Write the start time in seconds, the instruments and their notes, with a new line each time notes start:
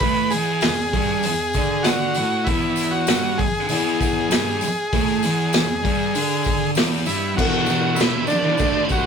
0.00 distorted electric guitar A2 A3, transistor combo organ B4, kick, open hi-hat
0.30 distorted electric guitar E2 E3, transistor combo organ G#4, open hi-hat, tambourine
0.61 distorted electric guitar E2, snare, open hi-hat, tambourine
0.93 distorted electric guitar G2 G3, kick, open hi-hat
1.23 distorted electric guitar E2, open hi-hat, tambourine
1.53 distorted electric guitar D3 D4, kick, open hi-hat, tambourine
1.83 transistor combo organ F#4, snare, open hi-hat, tambourine
2.14 distorted electric guitar A2 A3, open hi-hat, tambourine
2.44 distorted electric guitar E2, transistor combo organ E4, kick, open hi-hat
2.49 distorted electric guitar E3
2.76 open hi-hat, tambourine
2.91 transistor combo organ F#4
3.07 distorted electric guitar G2 G3, snare, open hi-hat, tambourine
3.38 transistor combo organ G#4, muted distorted electric guitar stroke, kick, open hi-hat
3.68 distorted electric guitar E2 E3, transistor combo organ G#4, open hi-hat, tambourine
4.00 kick, open hi-hat, tambourine
4.31 distorted electric guitar G2 G3, snare, open hi-hat, tambourine
4.61 muted distorted electric guitar stroke, open hi-hat, tambourine
4.93 distorted electric guitar A2 A3, kick, open hi-hat, tambourine
5.23 distorted electric guitar E2 E3, open hi-hat, tambourine
5.53 distorted electric guitar E2, snare, open hi-hat, tambourine
5.84 distorted electric guitar G2 G3, kick, open hi-hat
6.15 distorted electric guitar D3 D4, open hi-hat, tambourine
6.44 kick, open hi-hat, tambourine
6.75 distorted electric guitar E2 E3, snare, open hi-hat, tambourine
7.06 distorted electric guitar G2 G3, transistor combo organ E4, open hi-hat, tambourine
7.35 distorted electric guitar E2 B2 E3, transistor combo organ F#4, kick, crash
7.65 distorted electric guitar E2 B2 E3, tambourine
7.70 crash
7.95 distorted electric guitar E2 B2, transistor combo organ E4, tambourine
7.99 distorted electric guitar E3, snare, crash
8.11 distorted electric guitar B2 E3
8.27 transistor combo organ D4, muted distorted electric guitar stroke, tambourine, crash
8.43 distorted electric guitar B2 E3
8.57 distorted electric guitar D3 A3 D4, kick, tambourine, crash
8.88 distorted electric guitar D3 A3 D4, transistor combo organ F#4, kick, tambourine, crash